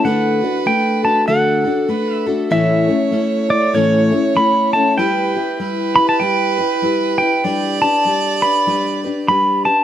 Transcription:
0.04 0.41 D3 medium
0.04 0.42 A3 medium
0.04 0.42 D4 medium
0.04 0.41 F#4 medium
0.04 0.40 A4 medium
0.04 1.24 B4 medium
0.04 0.66 F#5 medium
0.41 0.66 D4 soft
0.41 0.66 F#4 soft
0.41 0.66 A4 soft
0.66 1.03 A3 medium
0.66 1.03 D4 soft
0.66 1.02 A4 medium
0.66 1.04 G5 medium
1.03 1.27 D4 soft
1.03 1.28 F#4 soft
1.03 1.27 A4 soft
1.03 1.27 A5 medium
1.27 1.65 D3 medium
1.27 1.65 A3 medium
1.27 1.65 D4 medium
1.27 1.65 F#4 medium
1.27 1.91 A4 medium
1.27 1.63 A4 medium
1.27 2.15 F#5 medium
1.64 1.88 D4 soft
1.64 1.89 F#4 soft
1.64 1.89 A4 soft
1.88 2.26 A3 soft
1.88 2.26 D4 soft
1.88 2.26 F#4 soft
1.88 2.25 A4 medium
1.88 2.28 B4 medium
2.15 2.52 E5 medium
2.26 2.51 D4 soft
2.26 2.51 F#4 soft
2.26 2.52 A4 medium
2.26 2.51 A4 medium
2.50 2.88 A2 medium
2.50 2.88 E3 medium
2.50 2.88 A3 medium
2.50 2.88 C#4 medium
2.50 2.87 E4 medium
2.50 2.86 A4 medium
2.50 4.97 C#5 medium
2.50 3.46 E5 medium
2.87 3.10 A3 soft
2.87 3.11 C#4 soft
2.87 3.12 E4 soft
2.87 3.12 A4 soft
3.11 3.49 A3 soft
3.11 3.49 C#4 soft
3.11 3.49 E4 medium
3.11 3.48 A4 medium
3.49 3.73 A3 soft
3.49 3.74 E4 soft
3.49 3.74 A4 soft
3.49 3.75 D5 medium
3.73 4.11 A2 medium
3.73 4.11 E3 medium
3.73 4.11 A3 medium
3.73 4.12 C#4 medium
3.73 4.11 E4 medium
3.73 4.10 A4 medium
3.73 4.38 C#5 medium
4.11 4.34 A3 soft
4.11 4.35 C#4 soft
4.11 4.36 E4 soft
4.11 4.36 A4 soft
4.35 4.72 A3 soft
4.35 4.73 C#4 medium
4.35 4.73 E4 medium
4.35 4.72 A4 soft
4.35 4.73 B5 medium
4.73 4.97 A3 soft
4.73 4.98 C#4 soft
4.73 4.97 E4 soft
4.73 4.98 A4 soft
4.73 4.98 A5 medium
4.97 5.35 G3 medium
4.97 5.35 E4 medium
4.97 5.35 G4 medium
4.97 5.55 B4 medium
4.97 5.33 B4 medium
4.97 5.99 G5 medium
5.35 5.59 E4 soft
5.35 5.60 G4 soft
5.35 5.59 B4 soft
5.59 5.96 G3 soft
5.59 5.97 E4 soft
5.59 5.96 G4 medium
5.59 7.45 B4 medium
5.59 5.94 B4 soft
5.95 6.20 E4 soft
5.95 6.21 G4 soft
5.95 6.20 B4 soft
5.95 6.08 B5 medium
6.09 6.21 A5 medium
6.20 6.58 G3 medium
6.20 6.58 E4 medium
6.20 6.58 G4 medium
6.20 6.57 B4 medium
6.20 7.17 G5 medium
6.58 6.82 E4 soft
6.58 6.83 G4 soft
6.58 6.82 B4 soft
6.82 7.19 G3 soft
6.82 7.20 E4 soft
6.82 7.20 G4 medium
6.82 7.19 B4 medium
7.18 7.44 G4 soft
7.18 7.44 B4 soft
7.18 7.81 G5 medium
7.23 7.44 E4 soft
7.44 7.81 G3 medium
7.44 7.82 D4 medium
7.44 7.81 G4 medium
7.44 7.80 B4 medium
7.44 9.66 D5 medium
7.81 8.05 D4 soft
7.81 8.05 G4 soft
7.81 8.06 B4 soft
7.81 8.45 A5 medium
8.05 8.43 G3 soft
8.05 8.43 D4 soft
8.05 8.42 G4 soft
8.05 8.41 B4 medium
8.42 8.66 D4 soft
8.42 8.67 G4 soft
8.42 8.67 B4 soft
8.42 9.00 B5 medium
8.67 9.04 G3 medium
8.67 9.05 D4 medium
8.67 9.04 G4 medium
8.67 9.03 B4 medium
9.04 9.28 D4 soft
9.04 9.29 G4 soft
9.04 9.29 B4 soft
9.28 9.66 G3 soft
9.28 9.66 D4 medium
9.28 9.65 G4 medium
9.28 9.64 B4 medium
9.28 9.65 B5 medium
9.65 9.84 D4 soft
9.65 9.84 G4 soft
9.65 9.84 B4 soft
9.65 9.84 A5 medium

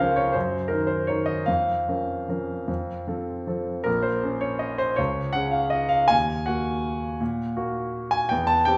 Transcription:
0.00 0.38 C#2 soft
0.00 0.37 F3 soft
0.00 0.37 C#4 soft
0.00 0.38 A#4 medium
0.00 0.33 C5 medium
0.00 0.16 C#5 medium
0.00 0.17 F5 medium
0.16 0.34 C#5 medium
0.33 0.69 F#2 soft
0.33 0.70 C5 medium
0.68 1.05 D#3 soft
0.68 1.05 D#4 soft
0.68 0.88 A#4 medium
0.87 1.08 C5 medium
1.07 1.44 D#3 soft
1.07 1.44 D#4 soft
1.07 1.44 A#4 soft
1.07 1.27 C#5 medium
1.26 1.46 D#5 medium
1.46 1.86 F2 soft
1.46 3.46 F5 medium
1.88 2.25 F3 soft
1.88 2.25 C#4 soft
1.88 2.25 A#4 soft
2.29 2.64 F3 soft
2.29 2.64 C#4 soft
2.29 2.64 A#4 soft
2.68 3.06 F2 soft
3.07 3.43 F3 soft
3.07 3.44 C4 soft
3.07 3.44 A4 soft
3.47 3.83 F3 soft
3.47 3.83 C4 soft
3.47 3.83 A4 soft
3.84 4.23 A#1 soft
3.84 4.04 A#4 medium
4.03 4.42 C5 medium
4.24 4.94 C#4 soft
4.24 4.95 A#4 soft
4.41 4.61 C#5 medium
4.59 4.79 D#5 medium
4.78 4.97 C5 medium
4.96 5.34 C#2 soft
4.96 5.34 C#5 medium
5.33 6.06 C#4 soft
5.33 6.06 G#4 soft
5.33 5.52 F#5 medium
5.51 5.71 F5 medium
5.70 5.90 D#5 medium
5.89 6.09 F5 medium
6.08 6.46 D#2 soft
6.08 6.46 G#5 medium
6.46 7.16 A#3 soft
6.46 7.16 F#4 soft
6.46 8.13 F#5 medium
7.20 7.56 A#2 medium
7.57 8.28 A#3 soft
7.57 8.28 F#4 soft
8.11 8.30 G#5 medium
8.29 8.65 E2 medium
8.29 8.48 G5 medium
8.47 8.66 A5 medium
8.65 8.78 C4 soft
8.65 8.78 G4 soft
8.65 8.78 G5 medium

